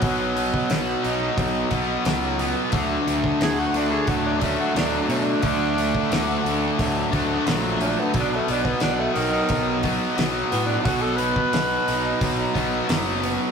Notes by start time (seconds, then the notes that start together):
Already playing: F#3 B3 F#4
0.02 B1 B2 F#3 B3, kick, open hi-hat
0.37 B3, open hi-hat
0.54 kick
0.70 B1 F#4, snare, open hi-hat
1.03 B1 D#4, open hi-hat
1.37 B1 F#3, kick, open hi-hat
1.71 B1 B2 F#3 B3, kick, open hi-hat
2.05 C#2 B2 F#3 B3, snare, open hi-hat
2.39 B3, open hi-hat
2.71 D2 D3 A3 D4, kick, open hi-hat
3.06 D2 A3, open hi-hat
3.24 kick
3.40 D2 F#4 G#4, snare, open hi-hat
3.60 F#4
3.73 D2 D4, open hi-hat
3.92 G#4
4.07 D2 F#3 F#4, kick, open hi-hat
4.25 D4
4.40 D3 A3 C#4 D4, kick, open hi-hat
4.60 F#4
4.73 D2 D3 F#3 A3 D4, open hi-hat
4.77 D4, snare
5.08 B2 A3 D4, open hi-hat
5.42 D2 D3 A3 D4, kick, open hi-hat
5.78 A3, open hi-hat
5.95 kick
6.11 D2 F#4, snare, open hi-hat
6.44 D2 D4, open hi-hat
6.78 D2 F#3, kick, open hi-hat
7.11 D2 D3 A3 D4, kick, open hi-hat
7.46 A#1 D3 F#3 A3 D4, snare, open hi-hat
7.81 A3 D4, open hi-hat
8.00 B3
8.13 B1 B2 F#3 B3, kick, open hi-hat
8.20 D4
8.36 A3
8.48 B1 B3 D4, open hi-hat
8.65 B3, kick
8.80 B1 D4 F#4, snare, open hi-hat
8.99 A3
9.13 B1 D#3 D#4, open hi-hat
9.49 B1 F#3, kick, open hi-hat
9.83 B2 F#3 B3, kick, open hi-hat
10.16 B1 B2 F#3 B3, snare, open hi-hat
10.51 A2 B3, open hi-hat
10.66 D4
10.84 B1 B2 F#3 B3 F#4, kick, open hi-hat
11.02 A4
11.16 B3 B4, open hi-hat
11.36 kick
11.53 B1 F#4, snare, open hi-hat
11.86 B1 D#4, open hi-hat
12.21 B1 F#3, kick, open hi-hat
12.54 B1 B2 F#3 B3, kick, open hi-hat
12.88 F#1 B2 F#3 B3, snare, open hi-hat
13.22 B3, open hi-hat